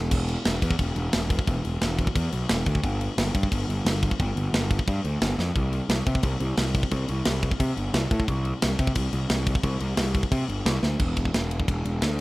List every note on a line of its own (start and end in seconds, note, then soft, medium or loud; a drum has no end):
0.00 0.11 E1 medium
0.11 0.35 E1 loud
0.11 kick loud
0.11 crash loud
0.11 crash medium
0.28 crash medium
0.45 0.58 E1 medium
0.45 snare loud
0.45 crash medium
0.62 0.74 E2 medium
0.62 kick medium
0.62 crash medium
0.71 kick medium
0.79 0.91 E1 medium
0.79 kick medium
0.79 crash medium
0.96 1.08 E1 medium
0.96 crash medium
1.13 1.38 E1 medium
1.13 snare loud
1.13 crash medium
1.30 kick medium
1.30 crash medium
1.39 kick medium
1.47 1.59 E1 loud
1.47 kick medium
1.47 crash medium
1.65 1.77 E1 medium
1.65 crash medium
1.81 2.06 E1 medium
1.81 snare loud
1.81 crash medium
1.99 kick medium
1.99 crash medium
2.07 kick medium
2.16 2.27 E2 medium
2.16 kick loud
2.16 crash medium
2.32 2.45 B1 medium
2.32 crash medium
2.49 2.62 E1 loud
2.49 snare loud
2.49 crash medium
2.66 2.79 D2 loud
2.66 kick medium
2.66 crash medium
2.75 kick medium
2.83 3.07 G1 loud
2.83 kick medium
2.83 crash medium
3.01 crash medium
3.18 3.30 G1 medium
3.18 snare loud
3.18 crash loud
3.35 3.47 G2 medium
3.35 kick medium
3.35 crash medium
3.43 kick medium
3.52 3.64 G1 loud
3.52 kick medium
3.52 crash medium
3.68 3.80 G1 medium
3.68 crash medium
3.85 4.09 G1 loud
3.85 snare loud
3.85 crash medium
4.03 kick loud
4.03 crash medium
4.11 kick medium
4.20 4.31 G1 loud
4.20 kick medium
4.20 crash medium
4.36 4.48 G1 medium
4.36 crash medium
4.53 4.77 G1 medium
4.53 snare loud
4.53 crash medium
4.71 kick loud
4.71 crash medium
4.79 kick medium
4.87 5.00 G2 medium
4.87 kick loud
4.87 crash medium
5.04 5.16 D2 medium
5.04 crash medium
5.22 5.34 G1 medium
5.22 snare loud
5.22 crash medium
5.39 5.51 F2 medium
5.39 snare medium
5.55 5.80 C2 loud
5.55 kick medium
5.55 crash medium
5.73 crash medium
5.89 6.01 C2 medium
5.89 snare loud
5.89 crash medium
6.06 6.19 C3 medium
6.06 kick medium
6.06 crash medium
6.15 kick medium
6.23 6.35 C2 medium
6.23 kick loud
6.23 crash medium
6.40 6.52 C2 medium
6.40 crash medium
6.57 6.81 C2 medium
6.57 snare loud
6.57 crash medium
6.75 kick medium
6.75 crash medium
6.83 kick medium
6.91 7.04 C2 loud
6.91 kick medium
6.91 crash medium
7.08 7.21 C2 medium
7.08 crash medium
7.25 7.50 C2 medium
7.25 snare loud
7.25 crash loud
7.43 kick medium
7.43 crash medium
7.51 kick medium
7.60 7.72 C3 medium
7.60 kick medium
7.60 crash medium
7.77 7.89 G1 medium
7.77 crash medium
7.94 8.06 C2 loud
7.94 snare loud
7.94 crash medium
8.11 8.23 A2 medium
8.11 kick medium
8.11 crash medium
8.20 kick medium
8.28 8.52 C2 loud
8.28 kick medium
8.28 crash medium
8.45 crash medium
8.62 8.75 C2 medium
8.62 snare loud
8.62 crash medium
8.79 8.91 C3 medium
8.79 kick loud
8.79 crash medium
8.87 kick loud
8.95 9.08 C2 loud
8.95 kick loud
8.95 crash medium
9.13 9.25 C2 medium
9.13 crash medium
9.30 9.54 C2 medium
9.30 snare loud
9.30 crash medium
9.47 kick loud
9.47 crash medium
9.55 kick medium
9.63 9.76 C2 loud
9.63 kick medium
9.63 crash medium
9.80 9.93 C2 medium
9.80 crash medium
9.97 10.21 C2 medium
9.97 snare loud
9.97 crash loud
10.15 kick medium
10.15 crash medium
10.23 kick medium
10.32 10.44 C3 medium
10.32 kick loud
10.32 crash medium
10.48 10.61 G1 medium
10.48 crash medium
10.65 10.78 C2 medium
10.65 snare loud
10.65 crash medium
10.83 10.95 D2 medium
10.83 snare medium
11.00 11.29 E1 loud
11.00 kick loud
11.00 crash medium
11.17 kick medium
11.17 ride medium
11.25 kick medium
11.34 11.63 E1 medium
11.34 snare loud
11.34 ride loud
11.51 ride medium
11.60 kick medium
11.68 11.83 E1 medium
11.68 kick loud
11.68 ride loud
11.85 12.00 E1 medium
11.85 ride medium
12.02 12.21 D2 loud
12.02 snare loud
12.02 ride loud